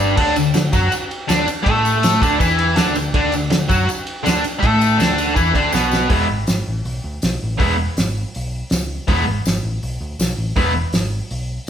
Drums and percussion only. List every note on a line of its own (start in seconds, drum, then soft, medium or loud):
0.17 kick loud
0.17 crash loud
0.36 ride medium
0.36 tambourine medium
0.54 snare loud
0.54 ride loud
0.54 tambourine medium
0.73 kick loud
0.73 ride medium
0.73 tambourine medium
0.92 ride medium
0.92 tambourine medium
1.11 ride medium
1.29 snare loud
1.29 ride loud
1.29 tambourine loud
1.48 ride medium
1.48 tambourine medium
1.66 kick loud
1.66 ride loud
1.85 ride medium
1.85 tambourine medium
2.03 snare loud
2.03 ride loud
2.03 tambourine medium
2.22 kick loud
2.22 ride medium
2.22 tambourine medium
2.40 kick loud
2.40 ride loud
2.40 tambourine medium
2.59 ride medium
2.76 snare loud
2.76 ride loud
2.76 tambourine medium
2.95 ride medium
2.95 tambourine medium
3.14 kick loud
3.14 ride loud
3.32 ride medium
3.32 tambourine medium
3.50 snare loud
3.50 ride loud
3.50 tambourine medium
3.69 kick loud
3.69 ride medium
3.69 tambourine medium
3.89 ride medium
3.89 tambourine medium
4.07 ride medium
4.26 snare loud
4.26 ride loud
4.26 tambourine medium
4.44 ride medium
4.44 tambourine medium
4.63 kick loud
4.63 ride loud
4.63 tambourine soft
4.81 ride medium
4.81 tambourine medium
5.00 snare loud
5.00 ride loud
5.00 tambourine medium
5.18 ride medium
5.18 tambourine medium
5.36 kick loud
5.36 ride medium
5.36 tambourine medium
5.55 kick loud
5.55 ride medium
5.55 tambourine soft
5.73 snare medium
5.73 tambourine loud
5.91 snare medium
5.91 tambourine medium
6.10 kick loud
6.10 open hi-hat medium
6.47 snare loud
6.47 open hi-hat medium
6.47 tambourine medium
6.85 open hi-hat medium
7.22 snare loud
7.22 open hi-hat medium
7.22 tambourine medium
7.60 kick loud
7.60 open hi-hat medium
7.97 snare loud
7.97 open hi-hat medium
7.97 tambourine medium
8.35 open hi-hat medium
8.70 snare loud
8.70 open hi-hat medium
8.70 tambourine loud
9.08 kick loud
9.08 open hi-hat medium
9.45 snare loud
9.45 open hi-hat medium
9.45 tambourine medium
9.83 open hi-hat medium
10.20 snare loud
10.20 open hi-hat medium
10.20 tambourine loud
10.57 kick loud
10.57 open hi-hat medium
10.93 snare loud
10.93 open hi-hat medium
10.93 tambourine medium
11.31 open hi-hat medium